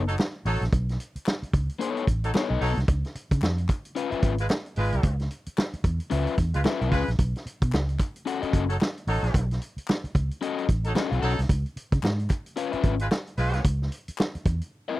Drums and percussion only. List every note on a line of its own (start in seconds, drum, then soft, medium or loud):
0.08 closed hi-hat medium
0.19 snare loud
0.19 clap medium
0.45 open hi-hat medium
0.62 snare soft
0.62 closed hi-hat soft
0.73 kick loud
0.73 closed hi-hat medium
0.89 snare soft
0.89 closed hi-hat soft
1.00 closed hi-hat medium
1.16 closed hi-hat medium
1.26 snare loud
1.26 clap loud
1.43 closed hi-hat soft
1.53 kick loud
1.53 closed hi-hat medium
1.69 closed hi-hat soft
1.81 closed hi-hat medium
1.97 closed hi-hat soft
2.07 kick medium
2.07 closed hi-hat medium
2.24 closed hi-hat medium
2.35 snare loud
2.35 clap medium
2.61 open hi-hat medium
2.77 snare soft
2.77 closed hi-hat soft
2.88 kick loud
2.88 closed hi-hat medium
3.04 snare soft
3.04 closed hi-hat soft
3.15 closed hi-hat medium
3.31 kick loud
3.31 closed hi-hat medium
3.42 snare loud
3.42 clap loud
3.58 closed hi-hat soft
3.69 kick loud
3.69 clap medium
3.69 closed hi-hat medium
3.85 closed hi-hat soft
3.96 closed hi-hat medium
4.12 closed hi-hat soft
4.22 kick medium
4.22 closed hi-hat medium
4.38 closed hi-hat medium
4.50 snare loud
4.50 clap medium
4.66 closed hi-hat soft
4.76 open hi-hat medium
4.92 closed hi-hat soft
5.03 kick loud
5.03 closed hi-hat medium
5.20 snare soft
5.20 closed hi-hat soft
5.31 closed hi-hat medium
5.46 closed hi-hat medium
5.58 snare loud
5.58 clap loud
5.73 closed hi-hat soft
5.84 kick loud
5.84 closed hi-hat medium
6.00 closed hi-hat soft
6.11 closed hi-hat medium
6.27 closed hi-hat soft
6.38 kick medium
6.38 closed hi-hat medium
6.54 closed hi-hat medium
6.65 snare loud
6.65 clap medium
6.82 closed hi-hat soft
6.92 kick medium
6.92 open hi-hat medium
7.08 snare soft
7.08 closed hi-hat soft
7.19 kick loud
7.19 closed hi-hat medium
7.36 snare soft
7.36 closed hi-hat soft
7.47 closed hi-hat medium
7.62 kick loud
7.62 closed hi-hat medium
7.73 snare loud
7.73 clap loud
7.89 closed hi-hat soft
7.99 kick loud
7.99 clap medium
7.99 closed hi-hat medium
8.16 closed hi-hat soft
8.27 closed hi-hat medium
8.43 closed hi-hat soft
8.53 kick loud
8.53 closed hi-hat medium
8.70 closed hi-hat medium
8.81 snare loud
8.81 clap medium
8.97 closed hi-hat soft
9.07 open hi-hat medium
9.24 snare soft
9.24 closed hi-hat soft
9.34 kick loud
9.34 closed hi-hat medium
9.51 snare soft
9.51 closed hi-hat soft
9.62 closed hi-hat medium
9.78 closed hi-hat medium
9.88 snare loud
9.88 clap loud
10.05 closed hi-hat soft
10.15 kick loud
10.15 closed hi-hat medium
10.31 closed hi-hat soft
10.42 closed hi-hat medium
10.58 closed hi-hat soft
10.69 kick medium
10.69 closed hi-hat medium
10.84 closed hi-hat medium
10.96 snare loud
10.96 clap medium
11.12 closed hi-hat soft
11.22 open hi-hat medium
11.39 snare soft
11.39 closed hi-hat soft
11.49 kick loud
11.49 closed hi-hat medium
11.66 closed hi-hat soft
11.77 closed hi-hat medium
11.92 kick loud
11.92 closed hi-hat medium
12.03 snare loud
12.03 clap loud
12.20 closed hi-hat soft
12.30 kick loud
12.30 clap medium
12.30 closed hi-hat medium
12.46 closed hi-hat soft
12.57 closed hi-hat medium
12.73 closed hi-hat soft
12.83 kick medium
12.83 closed hi-hat medium
12.99 closed hi-hat medium
13.11 snare loud
13.11 clap medium
13.27 closed hi-hat soft
13.37 open hi-hat medium
13.54 snare soft
13.54 closed hi-hat soft
13.64 kick loud
13.64 closed hi-hat medium
13.82 snare soft
13.92 closed hi-hat medium
14.08 closed hi-hat medium
14.18 snare loud
14.18 clap loud
14.35 closed hi-hat soft
14.45 kick loud
14.45 closed hi-hat medium
14.61 closed hi-hat soft